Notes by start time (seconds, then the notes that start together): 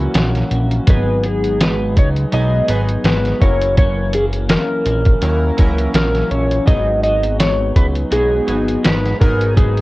Already playing: E3 F#3 A#3 C#4 E4 F#4 A#4
0.14 A#1 F#2 E3 A#3 C#4, snare, closed hi-hat
0.35 snare, closed hi-hat
0.50 A#1 E3 A#3 C#4, closed hi-hat
0.71 closed hi-hat
0.87 G#1 G#2 F#3 B3 D#4 G#4 B4, kick, closed hi-hat
1.23 F#3 B3 D#4 G#4, closed hi-hat
1.44 closed hi-hat
1.60 G#2 F#3 B3 D#4 B4, snare, closed hi-hat
1.95 C#2 F#3 B3 D#4 C#5, kick, closed hi-hat
2.16 closed hi-hat
2.32 B1 G#2 F#3 B3 D#4 G#4 D#5, closed hi-hat
2.68 G#1 F#3 B3 D#4 G#4 B4, closed hi-hat
2.89 closed hi-hat
3.04 G#1 G#2 F#3 B3 D#4 B4, snare, closed hi-hat
3.25 snare, closed hi-hat
3.40 F#1 E3 F#3 A#3 C#4 E4 A#4 C#5, kick, closed hi-hat
3.61 closed hi-hat
3.77 F#2 E3 A#3 C#4 C#5, kick, closed hi-hat
4.13 E3 A#3 C#4 G#4, closed hi-hat
4.33 closed hi-hat
4.49 F#2 E3 A#3 C#4 A#4, snare, closed hi-hat
4.85 A#1 E3 A#3 C#4, closed hi-hat
5.05 kick, closed hi-hat
5.21 D#2 F#2 F#3 A#3 C#4 E4 A#4, closed hi-hat
5.57 C#2 E3 F#3 A#3 C#4 E4 A#4, kick, closed hi-hat
5.78 closed hi-hat
5.93 A#1 F#2 E3 A#3 C#4 A#4, snare, closed hi-hat
6.15 snare, closed hi-hat
6.30 A#1 E3 A#3 C#4 C#5, closed hi-hat
6.51 closed hi-hat
6.66 G#1 G#2 F#3 B3 D#4 G#4 D#5, kick, closed hi-hat
7.03 F#3 B3 D#4 D#5, closed hi-hat
7.23 closed hi-hat
7.39 G#2 F#3 B3 D#4 C#5, snare, closed hi-hat
7.75 C#2 F#3 B3 D#4 B4, kick, closed hi-hat
7.96 closed hi-hat
8.11 B1 G#2 F#3 B3 D#4 G#4, closed hi-hat
8.47 G#1 F#3 B3 D#4 G#4, closed hi-hat
8.68 closed hi-hat
8.83 G#1 G#2 F#3 B3 D#4 B4, snare, closed hi-hat
9.05 snare, closed hi-hat
9.20 G#1 F#3 B3 D#4 G#4 A#4, kick, closed hi-hat
9.41 closed hi-hat
9.56 G#2 F#3 B3 D#4 G#4, kick, closed hi-hat
9.77 closed hi-hat